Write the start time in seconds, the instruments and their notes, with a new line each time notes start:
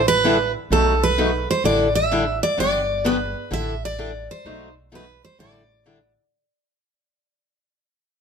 Already playing: upright bass A1
0.08 steel-string acoustic guitar B4
0.24 steel-string acoustic guitar D3 G3 D4 E4 A4
0.70 upright bass B1, steel-string acoustic guitar B2 F#3 A3 D#4 F#4 A4
1.03 steel-string acoustic guitar B4
1.18 steel-string acoustic guitar B2 F#3 A3 D#4 F#4
1.51 steel-string acoustic guitar C5
1.64 upright bass A1, steel-string acoustic guitar D3 G3 D4 E4 A4 D5
1.95 steel-string acoustic guitar E5
2.11 steel-string acoustic guitar D3 G3 D4 E4 A4
2.43 steel-string acoustic guitar D5
2.57 upright bass G1, steel-string acoustic guitar D3 F#3 B3 D4 G4 D5
3.04 steel-string acoustic guitar D3 F#3 B3 D4 G4 B4
3.51 upright bass A1, steel-string acoustic guitar D3 G3 D4 E4 A4 E5
3.85 steel-string acoustic guitar D5
3.98 steel-string acoustic guitar D3 G3 D4 E4 A4
4.31 steel-string acoustic guitar C5
4.45 upright bass B1, steel-string acoustic guitar B2 F#3 A3 D#4 F#4
4.92 steel-string acoustic guitar B2 F#3 A3 D#4 F#4 B4
5.25 steel-string acoustic guitar C5
5.39 upright bass A1, steel-string acoustic guitar D3 G3 D4 E4 A4 D5
5.86 steel-string acoustic guitar D3 G3 D4 E4 A4